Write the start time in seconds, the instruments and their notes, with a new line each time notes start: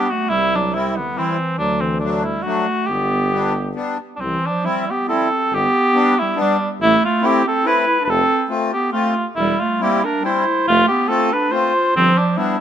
Already playing: clarinet B3, cor anglais G4
0.10 clarinet A3, cor anglais F#4
0.29 tuba C2, clarinet G3, cor anglais E4
0.55 clarinet F#3, cor anglais D4
0.73 accordion G3 C4 E4, clarinet G3, cor anglais E4
0.97 clarinet D3, cor anglais B3
1.15 clarinet E3, accordion G3 C4 E4, cor anglais C4
1.58 tuba D2, clarinet F#3, cor anglais D4
1.81 clarinet E3, cor anglais C4
2.00 accordion F#3 A3 D4, clarinet F#3, cor anglais D4
2.23 clarinet G3, cor anglais E4
2.43 accordion F#3 A3 D4, clarinet A3, cor anglais F#4
2.86 tuba G1, clarinet B3, cor anglais G4
3.31 accordion G3 B3 D4
3.75 accordion G3 B3 D4
4.16 clarinet F#3, cor anglais D4
4.20 tuba C2, cor anglais C4
4.26 clarinet E3
4.46 clarinet F3, cor anglais D4
4.63 accordion G3 C4 E4, cor anglais E4
4.69 clarinet G3
4.91 clarinet B3, cor anglais G4
5.06 accordion G3 C4 E4, cor anglais A4
5.13 clarinet C4
5.51 tuba G1, cor anglais G4
5.57 clarinet B3
5.92 accordion G3 B3 D4
6.19 clarinet G3, cor anglais E4
6.36 accordion G3 B3 D4
6.41 clarinet G3, cor anglais D4
6.80 tuba A1, cor anglais E4
6.84 clarinet A3
7.05 clarinet A3, cor anglais F4
7.20 accordion A3 C4 E4
7.26 clarinet C4, cor anglais G4
7.47 clarinet C4, cor anglais A4
7.63 accordion A3 C4 E4, clarinet E4, cor anglais B4
8.00 clarinet D4
8.05 tuba F1, cor anglais B4
8.09 clarinet C4, cor anglais A4
8.49 accordion A3 C4 F4
8.73 clarinet B3, cor anglais G4
8.91 accordion A3 C4 F4, clarinet A3, cor anglais F4
9.36 tuba E1, clarinet G3, cor anglais E4
9.60 clarinet A3, cor anglais F4
9.80 accordion G3 C4 E4, clarinet A#3, cor anglais G4
10.04 clarinet D4, cor anglais A#4
10.21 accordion G3 C4 E4, cor anglais C5
10.25 clarinet E4
10.67 tuba F1, clarinet A3, cor anglais F4
10.88 clarinet B3, cor anglais G4
11.07 accordion A3 C4 F4, clarinet C4, cor anglais A4
11.32 clarinet D4, cor anglais B4
11.50 accordion A3 C4 F4, clarinet F4, cor anglais C5
11.95 tuba G1, clarinet F3, cor anglais C4
12.18 clarinet F3, cor anglais D4
12.35 accordion G3 B3 D4, clarinet G3, cor anglais E4